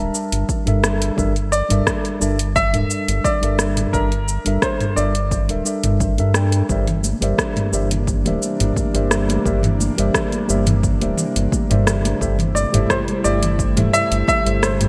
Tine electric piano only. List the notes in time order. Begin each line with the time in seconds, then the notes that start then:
Already playing: G3 D4
0.00 A#4 E5 A5
0.66 G3 D4 A4 A#4 E5
1.17 G3 D4 A4 A#4 E5
1.69 G3 D4 A4 A#4 E5
2.20 G3 D4 A4 A#4 E5
2.73 G3 D4 A4 A#4 E5
3.41 G3 D4 A4 A#4 E5
3.92 G3 D4 A4 A#4 E5
4.45 G3 D4 A4 A#4 E5
4.95 G3 D4 A4 A#4 E5
5.48 G3 D4 A4 A#4 E5
5.65 G3 D4 A4 A#4 E5
6.18 G3 D4 A4 A#4 E5
6.34 G3 D4 A4 A#4 G5
6.69 G3 G4 A#4 C5 D5 E5
7.21 G3 G4 A#4 C5 D5 E5
7.72 G3 G4 A#4 C5 D5 E5
8.25 G3 G4 A#4 C5 D5 E5
8.94 G3 G4 A#4 C5 D5 E5
9.44 G3 G4 A#4 C5 D5 E5
9.97 G3 G4 A#4 C5 D5 E5
10.48 G3 G4 A#4 C5 D5 E5
11.00 G3 G4 A#4 C5 D5 E5
11.69 G3 G4 A#4 C5 D5 E5
12.20 G3 G4 A4 C5 E5
12.72 G3 G4 A4 C5 E5
13.23 G3 G4 A4 C5 E5
13.76 G3 G4 A4 C5 E5
14.45 G3 G4 A4 C5 E5